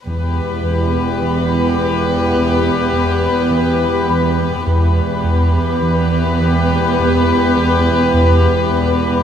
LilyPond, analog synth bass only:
\new Staff \with { instrumentName = "Analog synth bass" } { \clef bass \time 4/4 \key e \minor \tempo 4 = 52 e,8 e,8 e8 e,8 e,8 e,8 e,8 e,8 | e,8 e,8 e8 e,8 e,8 e,8 e,8 e,8 | }